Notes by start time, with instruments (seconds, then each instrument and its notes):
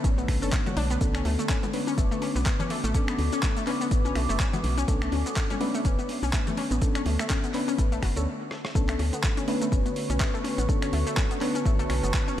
Already playing: ambient pad D3 A3 F#4 B4 C#5, fm electric piano B3 C#4 D4 B4
0.04 fm bass A1, synth arpeggio sound C#4, kick, closed hi-hat, shaker
0.18 synth arpeggio sound B3, shaker
0.28 fm bass B1, finger snap, kick, open hi-hat
0.42 fm bass F#1, fm electric piano B3 C#4 D4 C#5, synth arpeggio sound A4, shaker
0.53 kick, clap, closed hi-hat, shaker
0.66 synth arpeggio sound F#4, closed hi-hat, high conga, low conga, shaker
0.77 fm bass B1, synth arpeggio sound D4, open hi-hat
0.90 synth arpeggio sound B3, closed hi-hat, shaker
1.01 fm bass B1, fm electric piano B3 C#4 D4 A4, ambient pad D6, kick, closed hi-hat, shaker
1.15 synth arpeggio sound C#4, finger snap, shaker
1.25 fm bass D2, synth arpeggio sound A3, open hi-hat
1.39 synth arpeggio sound A3, closed hi-hat, shaker
1.49 synth arpeggio sound C#4, kick, clap, closed hi-hat, shaker
1.63 synth arpeggio sound B3, closed hi-hat, high conga, shaker
1.73 fm electric piano B3 C#4 D4 B4, open hi-hat
1.87 synth arpeggio sound C#4, shaker
1.98 fm bass F#1, synth arpeggio sound A3, kick, closed hi-hat, shaker
2.11 synth arpeggio sound A3, shaker
2.22 synth arpeggio sound C#4, open hi-hat
2.36 fm bass B1, synth arpeggio sound B3, shaker
2.46 kick, clap, closed hi-hat, shaker
2.59 synth arpeggio sound C#4, closed hi-hat, low conga, shaker
2.70 synth arpeggio sound A3, open hi-hat
2.84 fm bass A1, synth arpeggio sound A3, closed hi-hat, shaker
2.94 fm electric piano B3 C#4 D4 A4, synth arpeggio sound C#4, kick, closed hi-hat, shaker
3.08 synth arpeggio sound B3, finger snap, shaker
3.19 fm bass D2, open hi-hat
3.32 synth arpeggio sound C#4, closed hi-hat, shaker
3.43 synth arpeggio sound A3, kick, clap, closed hi-hat, shaker
3.57 synth arpeggio sound A3, closed hi-hat, shaker
3.67 fm electric piano B3 C#4 D4 B4, synth arpeggio sound C#4, clap, open hi-hat
3.81 synth arpeggio sound B3, shaker
3.91 fm bass A1, kick, closed hi-hat, shaker
4.05 synth arpeggio sound C#4, shaker
4.15 fm bass B1, synth arpeggio sound A3, finger snap, open hi-hat
4.29 fm bass F#1, synth arpeggio sound A3, shaker
4.40 synth arpeggio sound C#4, kick, clap, closed hi-hat, shaker
4.53 synth arpeggio sound B3, closed hi-hat, high conga, low conga, shaker
4.64 fm bass B1, open hi-hat
4.78 synth arpeggio sound C#4, closed hi-hat, shaker
4.88 fm bass B1, synth arpeggio sound A3, fm electric piano B3 C#4 D4 A4, kick, closed hi-hat, shaker
5.02 synth arpeggio sound A3, finger snap, shaker
5.12 fm bass D2, synth arpeggio sound C#4, open hi-hat
5.26 synth arpeggio sound B3, closed hi-hat, shaker
5.36 kick, clap, closed hi-hat, shaker
5.50 synth arpeggio sound C#4, closed hi-hat, high conga, shaker
5.61 synth arpeggio sound A3, fm electric piano B3 C#4 D4 B4, open hi-hat
5.74 synth arpeggio sound A3, shaker
5.85 fm bass F#1, synth arpeggio sound C#4, kick, closed hi-hat, shaker
5.99 synth arpeggio sound B3, shaker
6.09 open hi-hat
6.23 fm bass B1, synth arpeggio sound C#4, shaker
6.33 synth arpeggio sound A3, kick, clap, closed hi-hat, shaker
6.47 synth arpeggio sound A3, closed hi-hat, low conga, shaker
6.57 synth arpeggio sound C#4, open hi-hat
6.71 fm bass A1, synth arpeggio sound B3, closed hi-hat, shaker
6.82 fm electric piano B3 C#4 D4 A4, kick, closed hi-hat, shaker
6.95 synth arpeggio sound C#4, finger snap, closed hi-hat, shaker
7.06 fm bass D2, synth arpeggio sound A3, open hi-hat
7.19 synth arpeggio sound A3, finger snap, closed hi-hat, shaker
7.30 synth arpeggio sound C#4, kick, clap, closed hi-hat, shaker
7.44 synth arpeggio sound B3, closed hi-hat, shaker
7.54 fm electric piano B3 C#4 D4 B4, clap, open hi-hat
7.68 synth arpeggio sound C#4, shaker
7.78 fm bass A1, synth arpeggio sound A3, kick, closed hi-hat, shaker
7.92 synth arpeggio sound A3, closed hi-hat, shaker
8.03 fm bass F#1, synth arpeggio sound F#4, finger snap, kick, open hi-hat
8.16 fm bass D2, fm electric piano B3 C#4 D4 C#5, synth arpeggio sound A4, closed hi-hat, shaker
8.51 cross-stick
8.65 cross-stick
8.75 fm bass B1, ambient pad D3 A3 F#4 B4 C#5, analog synth pad D3, synth arpeggio sound A3, fm electric piano B3 C#4 D4 A4, kick, shaker
8.89 synth arpeggio sound A3, finger snap, clap, closed hi-hat, shaker
8.99 fm bass D2, synth arpeggio sound C#4, open hi-hat
9.13 synth arpeggio sound B3, closed hi-hat, shaker
9.20 analog synth pad B4, kick, clap, shaker
9.37 synth arpeggio sound C#4, closed hi-hat, shaker
9.47 synth arpeggio sound A3, fm electric piano B3 C#4 D4 B4, analog synth pad C#6, open hi-hat
9.61 synth arpeggio sound A3, closed hi-hat, shaker
9.72 fm bass F#1, synth arpeggio sound C#4, kick, shaker
9.86 synth arpeggio sound B3, closed hi-hat, shaker
9.96 open hi-hat
10.10 fm bass B1, synth arpeggio sound C#4, closed hi-hat, shaker
10.20 synth arpeggio sound A3, kick, clap, shaker
10.34 synth arpeggio sound A3, shaker
10.44 synth arpeggio sound C#4, open hi-hat
10.58 fm bass A1, synth arpeggio sound B3, closed hi-hat, shaker
10.69 fm electric piano B3 C#4 D4 A4, kick, shaker
10.82 synth arpeggio sound C#4, analog synth pad A5, finger snap, closed hi-hat, shaker
10.93 fm bass D2, synth arpeggio sound A3, open hi-hat
11.07 synth arpeggio sound A3, closed hi-hat, shaker
11.17 synth arpeggio sound C#4, kick, clap, shaker
11.31 synth arpeggio sound B3, closed hi-hat, shaker
11.41 fm electric piano B3 C#4 D4 B4, clap, open hi-hat
11.55 synth arpeggio sound C#4, closed hi-hat, shaker
11.65 fm bass A1, synth arpeggio sound A3, kick, shaker
11.79 synth arpeggio sound A3, closed hi-hat, shaker
11.90 fm bass B1, synth arpeggio sound C#4, finger snap, open hi-hat
12.03 fm bass F#1, synth arpeggio sound B3, closed hi-hat, shaker
12.14 kick, clap, shaker
12.28 synth arpeggio sound C#4, shaker